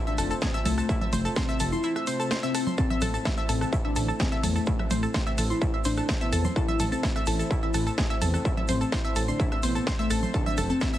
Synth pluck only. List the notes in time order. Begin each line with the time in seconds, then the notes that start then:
0.07 E5 E6
0.18 A4 A5
0.31 A4 A5
0.42 G#4 G#5
0.54 E5 E6
0.66 A4 A5
0.78 A4 A5
0.89 E4 E5
1.01 E5 E6
1.13 C5 C6
1.25 A4 A5
1.36 C5 C6
1.49 E5 E6
1.60 A4 A5
1.72 C6
1.84 E4 E5
1.96 E5 E6
2.07 C5 C6
2.20 A4 A5
2.31 C5 C6
2.43 E5 E6
2.55 A4 A5
2.67 C6
2.78 A4 A5
2.90 E5 E6
3.02 A4 A5
3.14 A4 A5
3.25 E4 E5
3.38 E5 E6
3.49 A4 A5
3.61 A4 A5
3.73 E4 E5
3.85 E5 E6
3.96 A4 A5
4.08 A4 A5
4.20 G#4 G#5
4.32 E5 E6
4.43 A4 A5
4.56 A4 A5
4.67 E4 E5
4.79 E5 E6
4.91 C5 C6
5.03 A4 A5
5.14 C5 C6
5.27 E5 E6
5.38 A4 A5
5.50 C6
5.61 E4 E5
5.74 E5 E6
5.85 C5 C6
5.97 A4 A5
6.09 C5 C6
6.21 E5 E6
6.32 A4 A5
6.45 C6
6.56 A4 A5
6.68 E5 E6
6.80 A4 A5
6.92 A4 A5
7.03 E4 E5
7.16 E5 E6
7.27 A4 A5
7.39 A4 A5
7.51 E4 E5
7.63 E5 E6
7.74 A4 A5
7.87 A4 A5
7.98 G#4 G#5
8.10 E5 E6
8.22 A4 A5
8.34 A4 A5
8.45 E4 E5
8.57 E5 E6
8.69 C5 C6
8.81 A4 A5
8.92 C5 C6
9.04 E5 E6
9.16 A4 A5
9.28 C6
9.40 E4 E5
9.52 E5 E6
9.63 C5 C6
9.75 A4 A5
9.87 C5 C6
9.99 E5 E6
10.10 A4 A5
10.23 C6
10.34 A4 A5
10.46 E5 E6
10.58 A4 A5
10.70 A4 A5
10.81 E4 E5
10.93 E5 E6